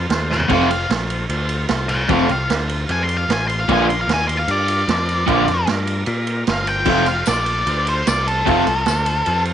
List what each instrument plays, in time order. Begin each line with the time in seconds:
0.09 picked electric bass D#2, transistor combo organ F4 A4 C5, snare, ride
0.31 lead electric guitar F5 G#5, snare
0.40 floor tom
0.48 picked electric bass F1, overdriven electric guitar F2 C3 F3 A3 C4 F4, transistor combo organ F4 A4, lead electric guitar A4 F5, kick, crash, ride
0.52 transistor combo organ C5
0.70 lead electric guitar F5, ride
0.89 picked electric bass A#1, transistor combo organ F4 A4 C5, snare, ride
1.10 ride
1.29 picked electric bass D2, transistor combo organ F4 A4 C5, ride
1.49 ride
1.68 picked electric bass C2, transistor combo organ F4 A4 C5, snare, ride
1.89 lead electric guitar F5 G#5, ride
2.06 picked electric bass F1, overdriven electric guitar F2 C3 F3, transistor combo organ F4 A4 C5, lead electric guitar A4 F5, kick, ride
2.11 overdriven electric guitar A3 C4 F4
2.29 picked electric bass C2, lead electric guitar F5, ride
2.45 transistor combo organ F4 A4 C5
2.50 picked electric bass D2, snare, ride
2.69 ride
2.86 picked electric bass F2, transistor combo organ F4 A4 D5, ride
2.92 lead electric guitar G#5
3.03 lead electric guitar C6
3.09 ride
3.17 lead electric guitar F5
3.27 picked electric bass A1, transistor combo organ F4 A4 C5, snare, ride
3.33 lead electric guitar G#5
3.48 lead electric guitar C6, ride
3.60 lead electric guitar F5
3.68 picked electric bass A#1, overdriven electric guitar A#2 D3 A#3 D4 F4, transistor combo organ F4 A#4 D5, kick, ride
3.73 lead electric guitar G#5
3.89 lead electric guitar C6, ride
4.01 transistor combo organ F4, lead electric guitar F5
4.06 picked electric bass D#2, transistor combo organ A#4 D5, ride
4.10 lead electric guitar G#5, snare
4.28 lead electric guitar C6, ride
4.37 lead electric guitar F5
4.48 picked electric bass G2, transistor combo organ F4 A#4 F5, lead electric guitar D5, ride
4.68 ride
4.87 picked electric bass F2, transistor combo organ F4 A#4 C5, snare, ride
5.09 ride
5.27 picked electric bass A#1, overdriven electric guitar A#2 D3 A#3 D4 F4, transistor combo organ F4 A#4 D5, kick, ride
5.48 picked electric bass F2, ride
5.67 picked electric bass G2, transistor combo organ F4 A#4 D5, snare, ride
5.87 ride
6.06 picked electric bass A#2, transistor combo organ F4 A#4 D5, ride
6.27 ride
6.47 picked electric bass G1, transistor combo organ F4, lead electric guitar F5, snare, ride
6.52 transistor combo organ A#4 C5
6.67 lead electric guitar G5, ride
6.85 picked electric bass F1, overdriven electric guitar F2 C3 F3 A3 C4 F4, transistor combo organ F4, kick, crash
6.91 transistor combo organ A4 C5
7.06 lead electric guitar F5, ride
7.26 picked electric bass A#1, transistor combo organ F4, lead electric guitar D5, snare, ride, tambourine
7.30 transistor combo organ A4 D5
7.46 ride
7.67 picked electric bass D2, transistor combo organ F4 A4 C5, ride
7.87 lead electric guitar C5, ride
8.07 picked electric bass C2, transistor combo organ F4 A4 C5, lead electric guitar D5, snare, ride, tambourine
8.27 lead electric guitar A4, ride
8.46 picked electric bass F1, overdriven electric guitar F2 C3 F3 A3 C4 F4, transistor combo organ F4 A4 D#5, kick, ride
8.67 picked electric bass C2, ride
8.86 picked electric bass D2, transistor combo organ F4 A4 C5, snare, ride, tambourine
9.06 ride
9.26 picked electric bass F2, transistor combo organ F4 A4 C5, ride
9.45 ride